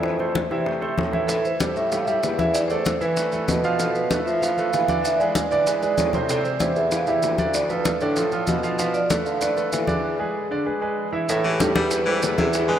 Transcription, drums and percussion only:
0.03 high bongo medium
0.03 high conga soft
0.19 high bongo soft
0.19 high conga soft
0.35 high bongo medium
0.35 high conga medium
0.51 high conga soft
0.66 high bongo medium
0.66 high conga soft
0.82 high bongo soft
0.82 high conga soft
0.98 high bongo medium
0.98 low bongo medium
0.98 high conga medium
1.13 high bongo soft
1.13 high conga medium
1.29 high bongo medium
1.29 high conga soft
1.29 maracas medium
1.45 high conga soft
1.45 maracas soft
1.60 high bongo soft
1.60 high conga loud
1.60 maracas medium
1.76 maracas soft
1.92 high bongo medium
1.92 high conga soft
1.92 maracas medium
2.07 high conga soft
2.07 maracas soft
2.23 high bongo medium
2.23 low bongo medium
2.23 high conga soft
2.23 maracas medium
2.39 high conga medium
2.39 maracas soft
2.54 high bongo medium
2.54 high conga soft
2.54 maracas medium
2.70 high bongo soft
2.70 high conga soft
2.70 maracas soft
2.85 high bongo medium
2.85 high conga loud
2.85 maracas medium
3.01 high conga soft
3.01 maracas soft
3.17 high bongo medium
3.17 high conga soft
3.17 maracas medium
3.32 high bongo soft
3.32 high conga soft
3.32 maracas soft
3.48 high bongo medium
3.48 low bongo medium
3.48 high conga medium
3.48 maracas medium
3.64 high bongo soft
3.64 maracas soft
3.79 high bongo medium
3.79 high conga soft
3.79 maracas medium
3.95 high conga soft
3.95 maracas soft
4.11 high bongo medium
4.11 high conga medium
4.11 maracas medium
4.27 maracas soft
4.42 high bongo medium
4.42 high conga soft
4.42 maracas medium
4.57 high conga soft
4.57 maracas soft
4.73 high bongo medium
4.73 low bongo medium
4.73 high conga soft
4.73 maracas medium
4.88 high conga medium
4.88 maracas soft
5.04 high bongo medium
5.04 high conga soft
5.04 maracas medium
5.20 high bongo soft
5.20 high conga soft
5.20 maracas soft
5.35 high bongo medium
5.35 high conga medium
5.35 maracas medium
5.51 high conga soft
5.51 maracas soft
5.67 high bongo medium
5.67 high conga soft
5.67 maracas medium
5.83 high bongo soft
5.83 high conga soft
5.83 maracas soft
5.98 high bongo medium
5.98 low bongo medium
5.98 high conga medium
5.98 maracas medium
6.13 high bongo soft
6.13 high conga medium
6.13 maracas soft
6.29 high bongo medium
6.29 high conga soft
6.29 maracas medium
6.45 high conga soft
6.45 maracas soft
6.60 high bongo medium
6.60 high conga medium
6.60 maracas medium
6.76 maracas soft
6.91 high bongo medium
6.91 high conga soft
6.91 maracas medium
7.07 high conga soft
7.07 maracas soft
7.23 high bongo medium
7.23 low bongo medium
7.23 high conga soft
7.23 maracas medium
7.38 high conga medium
7.38 maracas soft
7.54 high bongo medium
7.54 high conga soft
7.54 maracas medium
7.70 high bongo soft
7.70 high conga soft
7.70 maracas soft
7.85 high bongo medium
7.85 high conga medium
7.85 maracas medium
8.01 high conga soft
8.01 maracas soft
8.16 high bongo medium
8.16 high conga soft
8.16 maracas medium
8.32 high bongo soft
8.32 high conga soft
8.32 maracas soft
8.47 high bongo medium
8.47 low bongo medium
8.47 high conga medium
8.47 maracas medium
8.63 high bongo soft
8.63 maracas soft
8.79 high bongo medium
8.79 high conga soft
8.79 maracas medium
8.94 high conga soft
8.94 maracas soft
9.10 high bongo medium
9.10 high conga loud
9.10 maracas medium
9.26 maracas soft
9.41 high bongo medium
9.41 high conga soft
9.41 maracas medium
9.57 high conga soft
9.57 maracas soft
9.72 high bongo medium
9.72 low bongo medium
9.72 high conga soft
9.72 maracas medium
9.87 high conga medium
9.87 maracas soft
11.29 high bongo medium
11.29 high conga soft
11.29 maracas medium
11.45 high bongo soft
11.45 high conga soft
11.60 high bongo medium
11.60 high conga loud
11.60 maracas medium
11.75 high conga loud
11.75 maracas soft
11.91 high bongo medium
11.91 high conga soft
11.91 maracas medium
12.07 high bongo soft
12.07 high conga soft
12.22 high bongo medium
12.22 low bongo medium
12.22 high conga soft
12.22 maracas medium
12.38 high bongo soft
12.38 high conga medium
12.38 maracas soft
12.53 high bongo medium
12.53 high conga soft
12.53 maracas medium
12.69 high bongo soft
12.69 high conga soft

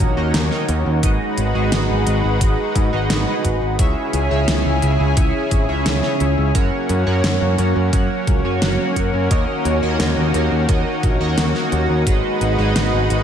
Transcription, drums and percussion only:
0.00 kick loud
0.00 closed hi-hat medium
0.34 snare loud
0.34 closed hi-hat loud
0.51 snare soft
0.69 closed hi-hat medium
1.03 kick loud
1.03 closed hi-hat loud
1.38 closed hi-hat medium
1.72 snare loud
1.72 closed hi-hat loud
2.07 closed hi-hat medium
2.41 kick loud
2.41 closed hi-hat loud
2.76 kick loud
2.76 closed hi-hat medium
3.10 snare loud
3.10 closed hi-hat medium
3.45 kick medium
3.45 closed hi-hat medium
3.79 kick loud
3.79 closed hi-hat loud
4.13 closed hi-hat medium
4.48 snare loud
4.48 closed hi-hat medium
4.82 closed hi-hat medium
5.17 kick loud
5.17 closed hi-hat loud
5.51 kick loud
5.51 closed hi-hat medium
5.86 snare loud
5.86 closed hi-hat medium
6.03 snare soft
6.20 closed hi-hat medium
6.55 kick loud
6.55 closed hi-hat medium
6.89 closed hi-hat medium
7.24 snare loud
7.24 closed hi-hat medium
7.58 closed hi-hat medium
7.93 kick loud
7.93 closed hi-hat medium
8.27 kick loud
8.27 closed hi-hat medium
8.62 snare loud
8.62 closed hi-hat medium
8.96 kick medium
8.96 closed hi-hat medium
9.31 kick loud
9.31 closed hi-hat medium
9.65 closed hi-hat medium
10.00 snare loud
10.00 closed hi-hat medium
10.34 closed hi-hat medium
10.69 kick loud
10.69 closed hi-hat medium
11.03 kick loud
11.03 closed hi-hat medium
11.38 snare loud
11.38 closed hi-hat medium
11.55 snare soft
11.72 closed hi-hat medium
12.07 kick loud
12.07 closed hi-hat medium
12.41 closed hi-hat medium
12.76 snare loud
12.76 closed hi-hat medium
13.10 closed hi-hat medium

